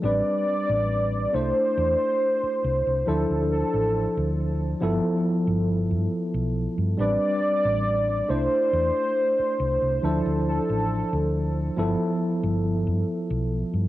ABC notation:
X:1
M:4/4
L:1/16
Q:1/4=69
K:C
V:1 name="Soft synth lead"
d6 c8 A2 | A6 z8 z2 | d6 c8 A2 | A6 z8 z2 |]
V:2 name="Tine electric piano"
[G,CDB]6 [A,DEc]8 [F,DEc]2- | [F,DEc]6 [F,B,EA]8- [F,B,EA]2 | [G,CDB]6 [A,DEc]8 [F,DEc]2- | [F,DEc]6 [F,B,EA]8- [F,B,EA]2 |]
V:3 name="Fingered electric bass" clef=bass
A,,, z2 A,,,3 C,, z E,, z3 C,, C,, D,, D,, | z A,,, z D,,3 G,,, z2 G,,,2 G,, z B,,, z G,, | A,,, z2 A,,,3 C,, z E,, z3 C,, C,, D,, D,, | z A,,, z D,,3 G,,, z2 G,,,2 G,, z B,,, z G,, |]